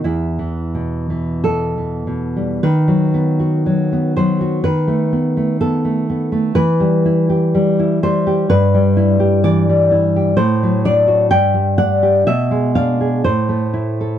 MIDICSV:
0, 0, Header, 1, 2, 480
1, 0, Start_track
1, 0, Key_signature, 1, "minor"
1, 0, Tempo, 1398601
1, 13, Time_signature, 2, 2, 24, 8
1, 494, Tempo, 1188119
1, 974, Tempo, 1015228
1, 1454, Tempo, 995025
1, 2414, Tempo, 949367
1, 5294, Tempo, 974026
1, 6702, End_track
2, 0, Start_track
2, 0, Title_t, "Nylon-string guitar"
2, 0, Program_c, 0, 24
2, 14, Note_on_c, 0, 64, 81
2, 17, Note_on_c, 0, 40, 60
2, 134, Note_on_c, 0, 52, 49
2, 256, Note_on_c, 0, 47, 46
2, 374, Note_off_c, 0, 52, 0
2, 378, Note_on_c, 0, 52, 45
2, 480, Note_off_c, 0, 64, 0
2, 491, Note_off_c, 0, 47, 0
2, 493, Note_on_c, 0, 69, 97
2, 496, Note_on_c, 0, 47, 45
2, 626, Note_off_c, 0, 52, 0
2, 630, Note_on_c, 0, 52, 44
2, 744, Note_off_c, 0, 47, 0
2, 749, Note_on_c, 0, 47, 45
2, 868, Note_on_c, 0, 55, 47
2, 958, Note_off_c, 0, 69, 0
2, 960, Note_off_c, 0, 40, 0
2, 973, Note_off_c, 0, 47, 0
2, 974, Note_off_c, 0, 55, 0
2, 976, Note_on_c, 0, 71, 92
2, 977, Note_off_c, 0, 52, 0
2, 978, Note_on_c, 0, 51, 75
2, 1092, Note_on_c, 0, 54, 56
2, 1216, Note_on_c, 0, 59, 60
2, 1337, Note_on_c, 0, 66, 53
2, 1457, Note_off_c, 0, 54, 0
2, 1463, Note_on_c, 0, 54, 60
2, 1585, Note_off_c, 0, 59, 0
2, 1591, Note_on_c, 0, 59, 56
2, 1677, Note_off_c, 0, 71, 0
2, 1704, Note_off_c, 0, 54, 0
2, 1706, Note_on_c, 0, 72, 94
2, 1710, Note_on_c, 0, 54, 60
2, 1818, Note_off_c, 0, 66, 0
2, 1823, Note_on_c, 0, 66, 58
2, 1919, Note_off_c, 0, 51, 0
2, 1932, Note_off_c, 0, 72, 0
2, 1934, Note_on_c, 0, 71, 113
2, 1939, Note_on_c, 0, 51, 76
2, 1940, Note_off_c, 0, 66, 0
2, 1943, Note_off_c, 0, 54, 0
2, 1944, Note_off_c, 0, 59, 0
2, 2048, Note_on_c, 0, 57, 60
2, 2169, Note_on_c, 0, 59, 59
2, 2281, Note_off_c, 0, 57, 0
2, 2287, Note_on_c, 0, 57, 60
2, 2394, Note_off_c, 0, 71, 0
2, 2399, Note_off_c, 0, 59, 0
2, 2401, Note_on_c, 0, 69, 103
2, 2405, Note_on_c, 0, 59, 61
2, 2516, Note_off_c, 0, 57, 0
2, 2523, Note_on_c, 0, 57, 54
2, 2642, Note_off_c, 0, 59, 0
2, 2648, Note_on_c, 0, 59, 63
2, 2756, Note_off_c, 0, 57, 0
2, 2762, Note_on_c, 0, 57, 61
2, 2865, Note_off_c, 0, 69, 0
2, 2872, Note_off_c, 0, 51, 0
2, 2878, Note_on_c, 0, 71, 118
2, 2882, Note_on_c, 0, 52, 79
2, 2886, Note_off_c, 0, 57, 0
2, 2888, Note_off_c, 0, 59, 0
2, 3005, Note_on_c, 0, 55, 62
2, 3133, Note_on_c, 0, 64, 64
2, 3252, Note_off_c, 0, 64, 0
2, 3254, Note_on_c, 0, 67, 62
2, 3375, Note_off_c, 0, 55, 0
2, 3381, Note_on_c, 0, 55, 65
2, 3506, Note_on_c, 0, 64, 63
2, 3597, Note_off_c, 0, 71, 0
2, 3620, Note_off_c, 0, 55, 0
2, 3625, Note_on_c, 0, 55, 66
2, 3627, Note_on_c, 0, 72, 118
2, 3740, Note_off_c, 0, 67, 0
2, 3746, Note_on_c, 0, 67, 72
2, 3836, Note_off_c, 0, 52, 0
2, 3853, Note_off_c, 0, 72, 0
2, 3862, Note_off_c, 0, 64, 0
2, 3862, Note_on_c, 0, 71, 124
2, 3863, Note_off_c, 0, 55, 0
2, 3863, Note_off_c, 0, 67, 0
2, 3865, Note_on_c, 0, 43, 85
2, 3986, Note_on_c, 0, 55, 70
2, 4100, Note_on_c, 0, 64, 72
2, 4216, Note_on_c, 0, 67, 69
2, 4321, Note_off_c, 0, 71, 0
2, 4339, Note_on_c, 0, 74, 113
2, 4341, Note_on_c, 0, 52, 68
2, 4461, Note_off_c, 0, 55, 0
2, 4467, Note_on_c, 0, 55, 65
2, 4567, Note_off_c, 0, 74, 0
2, 4572, Note_off_c, 0, 64, 0
2, 4578, Note_on_c, 0, 64, 68
2, 4697, Note_off_c, 0, 67, 0
2, 4704, Note_on_c, 0, 67, 67
2, 4795, Note_off_c, 0, 43, 0
2, 4805, Note_off_c, 0, 64, 0
2, 4807, Note_on_c, 0, 72, 120
2, 4808, Note_off_c, 0, 52, 0
2, 4810, Note_on_c, 0, 45, 90
2, 4818, Note_off_c, 0, 55, 0
2, 4818, Note_off_c, 0, 67, 0
2, 4940, Note_on_c, 0, 54, 67
2, 5039, Note_off_c, 0, 72, 0
2, 5053, Note_on_c, 0, 74, 122
2, 5056, Note_on_c, 0, 62, 68
2, 5165, Note_on_c, 0, 66, 69
2, 5275, Note_off_c, 0, 45, 0
2, 5281, Note_off_c, 0, 74, 0
2, 5283, Note_on_c, 0, 79, 121
2, 5286, Note_on_c, 0, 43, 84
2, 5288, Note_off_c, 0, 66, 0
2, 5294, Note_off_c, 0, 62, 0
2, 5295, Note_off_c, 0, 54, 0
2, 5398, Note_on_c, 0, 55, 57
2, 5514, Note_off_c, 0, 79, 0
2, 5516, Note_on_c, 0, 62, 64
2, 5516, Note_on_c, 0, 78, 123
2, 5638, Note_on_c, 0, 67, 67
2, 5749, Note_off_c, 0, 43, 0
2, 5750, Note_off_c, 0, 78, 0
2, 5757, Note_on_c, 0, 76, 116
2, 5759, Note_on_c, 0, 47, 83
2, 5760, Note_off_c, 0, 55, 0
2, 5760, Note_off_c, 0, 62, 0
2, 5761, Note_off_c, 0, 67, 0
2, 5876, Note_on_c, 0, 56, 63
2, 5989, Note_off_c, 0, 76, 0
2, 5995, Note_on_c, 0, 62, 60
2, 5996, Note_on_c, 0, 77, 105
2, 6120, Note_on_c, 0, 68, 58
2, 6223, Note_off_c, 0, 47, 0
2, 6227, Note_off_c, 0, 77, 0
2, 6236, Note_off_c, 0, 56, 0
2, 6237, Note_off_c, 0, 62, 0
2, 6238, Note_on_c, 0, 72, 103
2, 6240, Note_off_c, 0, 68, 0
2, 6244, Note_on_c, 0, 45, 72
2, 6358, Note_on_c, 0, 57, 52
2, 6480, Note_on_c, 0, 64, 57
2, 6613, Note_on_c, 0, 69, 60
2, 6702, Note_off_c, 0, 45, 0
2, 6702, Note_off_c, 0, 57, 0
2, 6702, Note_off_c, 0, 64, 0
2, 6702, Note_off_c, 0, 69, 0
2, 6702, Note_off_c, 0, 72, 0
2, 6702, End_track
0, 0, End_of_file